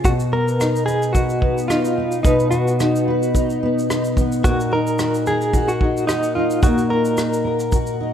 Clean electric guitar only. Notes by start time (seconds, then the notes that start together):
0.05 F#4
0.33 A#4
0.86 G#4
1.13 F#4
1.68 F4
2.23 D#4
2.51 F#4
4.44 F#4
4.73 A#4
5.27 G#4
5.68 F#4
6.07 D#4
6.35 F4
6.63 F#4
6.90 A#4